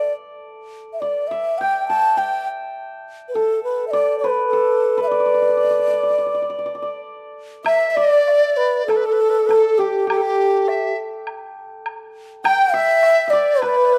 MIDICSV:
0, 0, Header, 1, 5, 480
1, 0, Start_track
1, 0, Tempo, 592885
1, 334, Time_signature, 4, 2, 24, 8
1, 4170, Tempo, 621762
1, 7530, Tempo, 589391
1, 11180, End_track
2, 0, Start_track
2, 0, Title_t, "Hammered dulcimer"
2, 0, Program_c, 0, 15
2, 0, Note_on_c, 0, 69, 56
2, 0, Note_on_c, 0, 74, 66
2, 820, Note_off_c, 0, 74, 0
2, 823, Note_on_c, 0, 74, 57
2, 1062, Note_on_c, 0, 76, 63
2, 1219, Note_off_c, 0, 69, 0
2, 1302, Note_on_c, 0, 79, 71
2, 1535, Note_on_c, 0, 81, 76
2, 1755, Note_off_c, 0, 79, 0
2, 1758, Note_on_c, 0, 79, 68
2, 2715, Note_on_c, 0, 69, 61
2, 2817, Note_off_c, 0, 74, 0
2, 2919, Note_off_c, 0, 76, 0
2, 3098, Note_off_c, 0, 81, 0
2, 3184, Note_on_c, 0, 74, 81
2, 3432, Note_on_c, 0, 71, 67
2, 3436, Note_off_c, 0, 79, 0
2, 3664, Note_off_c, 0, 69, 0
2, 3668, Note_on_c, 0, 69, 64
2, 4025, Note_off_c, 0, 71, 0
2, 4028, Note_on_c, 0, 71, 67
2, 4137, Note_off_c, 0, 74, 0
2, 4140, Note_on_c, 0, 74, 62
2, 4205, Note_off_c, 0, 74, 0
2, 4208, Note_on_c, 0, 74, 45
2, 4250, Note_off_c, 0, 74, 0
2, 4253, Note_on_c, 0, 74, 49
2, 4315, Note_off_c, 0, 74, 0
2, 4318, Note_on_c, 0, 74, 43
2, 4375, Note_off_c, 0, 74, 0
2, 4379, Note_on_c, 0, 74, 48
2, 4429, Note_off_c, 0, 74, 0
2, 4432, Note_on_c, 0, 74, 42
2, 4492, Note_off_c, 0, 74, 0
2, 4495, Note_on_c, 0, 74, 46
2, 4548, Note_off_c, 0, 74, 0
2, 4551, Note_on_c, 0, 74, 38
2, 4596, Note_off_c, 0, 74, 0
2, 4599, Note_on_c, 0, 74, 46
2, 4663, Note_off_c, 0, 74, 0
2, 4666, Note_on_c, 0, 74, 35
2, 4727, Note_off_c, 0, 74, 0
2, 4730, Note_on_c, 0, 74, 39
2, 4772, Note_off_c, 0, 74, 0
2, 4775, Note_on_c, 0, 74, 39
2, 4848, Note_off_c, 0, 74, 0
2, 4851, Note_on_c, 0, 74, 44
2, 4901, Note_off_c, 0, 74, 0
2, 4904, Note_on_c, 0, 74, 36
2, 4965, Note_off_c, 0, 74, 0
2, 4968, Note_on_c, 0, 74, 43
2, 5027, Note_off_c, 0, 74, 0
2, 5030, Note_on_c, 0, 74, 36
2, 5089, Note_off_c, 0, 74, 0
2, 5092, Note_on_c, 0, 74, 45
2, 5149, Note_off_c, 0, 74, 0
2, 5152, Note_on_c, 0, 74, 41
2, 5207, Note_off_c, 0, 74, 0
2, 5210, Note_on_c, 0, 74, 44
2, 5276, Note_off_c, 0, 74, 0
2, 5279, Note_on_c, 0, 74, 41
2, 5331, Note_off_c, 0, 74, 0
2, 5334, Note_on_c, 0, 74, 47
2, 5401, Note_off_c, 0, 74, 0
2, 5404, Note_on_c, 0, 74, 42
2, 5459, Note_off_c, 0, 74, 0
2, 5462, Note_on_c, 0, 74, 49
2, 5950, Note_off_c, 0, 69, 0
2, 6096, Note_on_c, 0, 76, 73
2, 6140, Note_off_c, 0, 71, 0
2, 6342, Note_off_c, 0, 74, 0
2, 6346, Note_on_c, 0, 74, 74
2, 7051, Note_on_c, 0, 69, 68
2, 7516, Note_off_c, 0, 69, 0
2, 7519, Note_on_c, 0, 69, 64
2, 7762, Note_on_c, 0, 67, 62
2, 7885, Note_off_c, 0, 76, 0
2, 7989, Note_off_c, 0, 67, 0
2, 7992, Note_on_c, 0, 67, 57
2, 8286, Note_off_c, 0, 74, 0
2, 9901, Note_off_c, 0, 69, 0
2, 9924, Note_on_c, 0, 79, 82
2, 10164, Note_on_c, 0, 76, 89
2, 10550, Note_off_c, 0, 67, 0
2, 10600, Note_off_c, 0, 76, 0
2, 10603, Note_on_c, 0, 76, 56
2, 10648, Note_on_c, 0, 74, 71
2, 10887, Note_on_c, 0, 71, 69
2, 11180, Note_off_c, 0, 71, 0
2, 11180, Note_off_c, 0, 74, 0
2, 11180, Note_off_c, 0, 76, 0
2, 11180, Note_off_c, 0, 79, 0
2, 11180, End_track
3, 0, Start_track
3, 0, Title_t, "Xiao"
3, 0, Program_c, 1, 77
3, 0, Note_on_c, 1, 74, 74
3, 100, Note_off_c, 1, 74, 0
3, 754, Note_on_c, 1, 76, 56
3, 813, Note_on_c, 1, 74, 74
3, 825, Note_off_c, 1, 76, 0
3, 1032, Note_on_c, 1, 76, 79
3, 1045, Note_off_c, 1, 74, 0
3, 1281, Note_on_c, 1, 79, 89
3, 1293, Note_off_c, 1, 76, 0
3, 1521, Note_off_c, 1, 79, 0
3, 1526, Note_on_c, 1, 81, 95
3, 1765, Note_on_c, 1, 79, 84
3, 1777, Note_off_c, 1, 81, 0
3, 2005, Note_off_c, 1, 79, 0
3, 2661, Note_on_c, 1, 71, 61
3, 2709, Note_on_c, 1, 69, 82
3, 2721, Note_off_c, 1, 71, 0
3, 2938, Note_off_c, 1, 69, 0
3, 2942, Note_on_c, 1, 71, 82
3, 3122, Note_off_c, 1, 71, 0
3, 3138, Note_on_c, 1, 76, 70
3, 3166, Note_on_c, 1, 74, 91
3, 3178, Note_off_c, 1, 76, 0
3, 3386, Note_off_c, 1, 74, 0
3, 3391, Note_on_c, 1, 71, 75
3, 3616, Note_off_c, 1, 71, 0
3, 3621, Note_on_c, 1, 69, 77
3, 4050, Note_off_c, 1, 69, 0
3, 4071, Note_on_c, 1, 76, 61
3, 4110, Note_on_c, 1, 74, 89
3, 4122, Note_off_c, 1, 76, 0
3, 5585, Note_off_c, 1, 74, 0
3, 6097, Note_on_c, 1, 76, 92
3, 6274, Note_off_c, 1, 76, 0
3, 6290, Note_on_c, 1, 76, 63
3, 6332, Note_on_c, 1, 74, 92
3, 6344, Note_off_c, 1, 76, 0
3, 6809, Note_on_c, 1, 71, 81
3, 6820, Note_off_c, 1, 74, 0
3, 7030, Note_off_c, 1, 71, 0
3, 7034, Note_on_c, 1, 69, 85
3, 7755, Note_on_c, 1, 67, 69
3, 7767, Note_off_c, 1, 69, 0
3, 8003, Note_off_c, 1, 67, 0
3, 8017, Note_on_c, 1, 67, 72
3, 8693, Note_off_c, 1, 67, 0
3, 9934, Note_on_c, 1, 79, 104
3, 10162, Note_on_c, 1, 76, 107
3, 10174, Note_off_c, 1, 79, 0
3, 10623, Note_on_c, 1, 74, 92
3, 10636, Note_off_c, 1, 76, 0
3, 10867, Note_on_c, 1, 71, 88
3, 10879, Note_off_c, 1, 74, 0
3, 11180, Note_off_c, 1, 71, 0
3, 11180, End_track
4, 0, Start_track
4, 0, Title_t, "Dizi"
4, 0, Program_c, 2, 73
4, 6111, Note_on_c, 2, 76, 71
4, 6345, Note_on_c, 2, 74, 79
4, 6356, Note_off_c, 2, 76, 0
4, 7058, Note_on_c, 2, 69, 62
4, 7070, Note_off_c, 2, 74, 0
4, 7114, Note_on_c, 2, 71, 58
4, 7125, Note_off_c, 2, 69, 0
4, 7185, Note_on_c, 2, 69, 60
4, 7197, Note_off_c, 2, 71, 0
4, 7240, Note_on_c, 2, 71, 55
4, 7251, Note_off_c, 2, 69, 0
4, 7306, Note_on_c, 2, 69, 58
4, 7317, Note_off_c, 2, 71, 0
4, 7372, Note_on_c, 2, 71, 52
4, 7384, Note_off_c, 2, 69, 0
4, 7441, Note_on_c, 2, 69, 57
4, 7452, Note_off_c, 2, 71, 0
4, 7501, Note_on_c, 2, 71, 53
4, 7513, Note_off_c, 2, 69, 0
4, 7565, Note_on_c, 2, 69, 72
4, 7578, Note_off_c, 2, 71, 0
4, 7776, Note_on_c, 2, 67, 61
4, 7788, Note_off_c, 2, 69, 0
4, 8004, Note_off_c, 2, 67, 0
4, 8009, Note_on_c, 2, 67, 61
4, 8074, Note_on_c, 2, 69, 50
4, 8087, Note_off_c, 2, 67, 0
4, 8110, Note_on_c, 2, 67, 65
4, 8123, Note_off_c, 2, 69, 0
4, 8493, Note_on_c, 2, 76, 66
4, 8505, Note_off_c, 2, 67, 0
4, 8726, Note_off_c, 2, 76, 0
4, 9919, Note_on_c, 2, 79, 88
4, 10166, Note_on_c, 2, 76, 89
4, 10179, Note_off_c, 2, 79, 0
4, 10642, Note_on_c, 2, 74, 74
4, 10654, Note_off_c, 2, 76, 0
4, 10882, Note_on_c, 2, 71, 63
4, 10894, Note_off_c, 2, 74, 0
4, 10936, Note_on_c, 2, 74, 62
4, 10948, Note_off_c, 2, 71, 0
4, 11003, Note_on_c, 2, 71, 58
4, 11015, Note_off_c, 2, 74, 0
4, 11070, Note_on_c, 2, 74, 59
4, 11082, Note_off_c, 2, 71, 0
4, 11136, Note_on_c, 2, 71, 61
4, 11148, Note_off_c, 2, 74, 0
4, 11180, Note_off_c, 2, 71, 0
4, 11180, End_track
5, 0, Start_track
5, 0, Title_t, "Drums"
5, 6106, Note_on_c, 9, 76, 60
5, 6183, Note_off_c, 9, 76, 0
5, 6583, Note_on_c, 9, 77, 40
5, 6661, Note_off_c, 9, 77, 0
5, 7064, Note_on_c, 9, 76, 38
5, 7142, Note_off_c, 9, 76, 0
5, 7533, Note_on_c, 9, 76, 37
5, 7614, Note_off_c, 9, 76, 0
5, 8016, Note_on_c, 9, 76, 57
5, 8098, Note_off_c, 9, 76, 0
5, 8488, Note_on_c, 9, 77, 39
5, 8569, Note_off_c, 9, 77, 0
5, 8969, Note_on_c, 9, 76, 44
5, 9050, Note_off_c, 9, 76, 0
5, 9448, Note_on_c, 9, 76, 43
5, 9530, Note_off_c, 9, 76, 0
5, 9932, Note_on_c, 9, 76, 65
5, 10013, Note_off_c, 9, 76, 0
5, 10401, Note_on_c, 9, 77, 43
5, 10483, Note_off_c, 9, 77, 0
5, 10882, Note_on_c, 9, 76, 44
5, 10964, Note_off_c, 9, 76, 0
5, 11180, End_track
0, 0, End_of_file